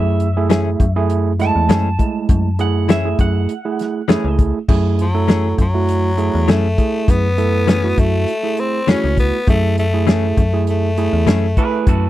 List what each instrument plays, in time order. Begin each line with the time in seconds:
Already playing: fm bass F#2, tine electric piano A3 E4 G#4, clean electric guitar E5
0.20 closed hi-hat
0.37 tine electric piano A3 E4 G#4
0.50 clean electric guitar E3 A3 C#4 G#4, snare, closed hi-hat
0.80 fm bass F#2, kick, closed hi-hat
0.96 tine electric piano A3 E4 G#4
1.10 closed hi-hat
1.39 tine electric piano G#3 A3 E4, clean electric guitar A5, snare, closed hi-hat
1.56 fm bass E2
1.69 fm bass F#2, clean electric guitar E3 A3 C#4 G#4, snare, closed hi-hat
1.99 tine electric piano G#3 A3 E4, kick, closed hi-hat
2.29 fm bass F#2, kick, closed hi-hat
2.59 tine electric piano A3 E4 G#4, clean electric guitar F#5, closed hi-hat
2.89 clean electric guitar E3 A3 C#4 G#4 E5, snare, closed hi-hat
3.05 tine electric piano A3 E4 G#4
3.19 fm bass F#2, clean electric guitar F#5, kick, closed hi-hat
3.49 closed hi-hat
3.65 tine electric piano A3 E4 G#4
3.79 snare, closed hi-hat
4.08 fm bass F#2, clean electric guitar E3 A3 C#4 G#4, tine electric piano A3 E4 G#4, snare, closed hi-hat
4.24 fm bass C#2
4.39 kick, closed hi-hat
4.68 fm bass F#2, tine electric piano A3 E4 G#4, kick, crash
4.99 tenor saxophone F#3, closed hi-hat
5.14 tine electric piano A3 E4 A4
5.28 clean electric guitar E3 A3 C#4 G#4, snare, closed hi-hat
5.58 fm bass F#2, tenor saxophone F#3, kick, closed hi-hat
5.74 tine electric piano A3 E4 F#4
5.88 closed hi-hat
6.18 tine electric piano A3 E4 G#4, closed hi-hat
6.35 fm bass E2
6.48 fm bass F#2, clean electric guitar E3 A3 C#4 G#4, tenor saxophone A3, snare, closed hi-hat
6.78 tine electric piano A3 E4 G#4, kick, closed hi-hat
7.08 fm bass F#2, tenor saxophone B3, kick, closed hi-hat
7.38 tine electric piano A3 E4 A4, closed hi-hat
7.67 clean electric guitar E3 A3 C#4 G#4, snare, closed hi-hat
7.84 tine electric piano A3 E4 F#4
7.97 fm bass F#2, tenor saxophone A3, kick, closed hi-hat
8.28 closed hi-hat
8.43 tine electric piano A3 E4 G#4
8.57 tenor saxophone C4, closed hi-hat
8.87 fm bass F#2, clean electric guitar E3 A3 C#4 G#4, tine electric piano A3 E4 F#4, tenor saxophone C#4, snare, closed hi-hat
9.04 fm bass C#2
9.17 tenor saxophone B3, kick, closed hi-hat
9.47 fm bass F#2, tine electric piano A3 E4 G#4, tenor saxophone A3, kick, closed hi-hat
9.78 tenor saxophone A3, closed hi-hat
9.93 tine electric piano A3 E4 G#4
10.07 clean electric guitar E3 A3 C#4 G#4, tenor saxophone A3, snare, closed hi-hat
10.37 fm bass F#2, kick, closed hi-hat
10.53 tine electric piano A3 E4 G#4
10.67 tenor saxophone A3, closed hi-hat
10.97 tine electric piano A3 E4 G#4, closed hi-hat
11.13 fm bass E2
11.27 fm bass F#2, clean electric guitar E3 A3 C#4 G#4, snare, closed hi-hat
11.57 tine electric piano A3 E4 B4, clean electric guitar G#4 B4, kick, closed hi-hat
11.87 fm bass F#2, clean electric guitar F#4 A4, kick, closed hi-hat